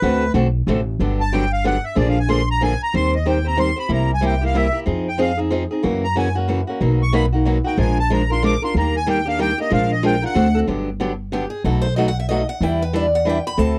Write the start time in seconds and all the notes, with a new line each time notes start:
Already playing: B4
0.02 D2 D3 A3 C4 F#4 A4
0.34 B1 D3 A3 C4 F#4 A4
0.67 A1 D3 A3 C4 F#4 A4
0.99 G1 D3 F#3 B3 D4 G4
1.21 A5
1.33 D3 F#3 B3 D4 G4 G5
1.53 F5
1.64 D3 F#3 B3 D4 G4 F#5
1.84 E5
1.95 A#1 D3 F3 A#3 D4 G#4 D5
2.09 F5
2.19 G#5
2.29 D3 F3 A#3 D4 G#4 C6
2.51 A#5
2.61 D3 F3 A#3 D4 G#4 G#5
2.83 A#5
2.93 D#2 D#3 G3 C4 G4 C5 C6
3.15 D#5
3.26 D#3 G3 C4 G4 C5 G5
3.45 C4 G4 C5 A#5
3.57 D#3 G3 C4 G4 C5 C6
3.76 C4 G4 C5 B5
3.88 C2 C3 G3 A#3 E4 G4
3.93 A#5
4.14 G#5
4.21 C3 G3 A#3 E4 G4
4.26 G5
4.41 A#3 E4 G4
4.46 F5
4.54 C3 G3 A#3 E4 G4 E5
4.73 A#3 E4 G4
4.86 F2 F3 C4 D#4 G#4
5.08 G5
5.18 F3 C4 D#4 G#4 F5
5.37 C4 D#4 G#4
5.51 F3 C4 D#4 G#4
5.71 C4 D#4 G#4
5.83 F#2 C#3 E3 A#3 C#4 F#4
6.04 A#5
6.16 C#3 E3 A#3 C#4 F#4 G#5
6.35 A#3 C#4 F#4
6.48 C#3 E3 A#3 C#4 F#4
6.67 A#3 C#4 F#4
6.80 B1 B2 F#3 A#3 D#4 F#4
7.03 C#6
7.13 B2 F#3 A#3 D#4 F#4 B5
7.32 A#3 D#4 F#4
7.45 B2 F#3 A#3 D#4 F#4
7.64 A#3 D#4 F#4 G5
7.77 A#1 F3 G#3 D4 F4 A#4 G#5
8.00 A5
8.10 F3 G#3 D4 F4 A#4 A#5
8.30 D4 F4 A#4 C6
8.43 F3 G#3 D4 F4 A#4 D6
8.62 D4 F4 A#4 C6
8.75 D#2 D#3 G3 A#3 D4 G4 A#5
8.97 G#5
9.07 D#3 G3 A#3 D4 G4 G5
9.25 A#3 D4 G4 F5
9.39 D#3 G3 A#3 D4 G4 G5
9.58 A#3 D4 G4 D#5
9.70 A#1 F3 G#3 D4 F4 A#4 F5
9.91 D#5
10.03 F3 G#3 D4 F4 A#4 G5
10.22 D4 F4 A#4 F#5
10.34 D2 D3 A3 C4 F#4 A4
10.55 C4 F#4 A4
10.67 G1 D3 F#3 B3 D4 G4
11.00 D3 F#3 B3 D4 G4
11.32 D3 F#3 B3 D4 G4
11.50 G#4
11.64 B1 B2 F#3 A3 D#4 F#4 A4
11.82 C5
11.96 B2 F#3 A3 D#4 F#4 D#5
12.08 F#5
12.20 E5
12.29 B2 F#3 A3 D#4 F#4 D#5
12.49 F#5
12.61 E2 E3 G3 D4 E4 B4 G5
12.82 B4
12.93 E3 G3 D4 E4 B4 D5
13.15 F#5
13.25 E3 G3 D4 E4 B4
13.29 G5
13.47 B5
13.58 D2 D3 A3 C4 F#4 A4 A5